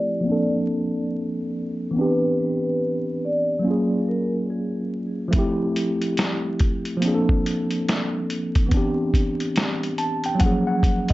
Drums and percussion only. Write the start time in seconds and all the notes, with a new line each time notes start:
5.33 kick, closed hi-hat
5.76 closed hi-hat
6.02 closed hi-hat
6.17 snare, closed hi-hat
6.59 kick, closed hi-hat
6.85 closed hi-hat
7.02 closed hi-hat
7.29 kick
7.46 closed hi-hat
7.71 closed hi-hat
7.89 snare, closed hi-hat
8.30 closed hi-hat
8.55 kick, closed hi-hat
8.71 kick, closed hi-hat
9.14 kick, closed hi-hat
9.40 closed hi-hat
9.56 snare, closed hi-hat
9.83 closed hi-hat
9.98 closed hi-hat
10.24 closed hi-hat
10.40 kick, closed hi-hat
10.83 kick, closed hi-hat
11.08 closed hi-hat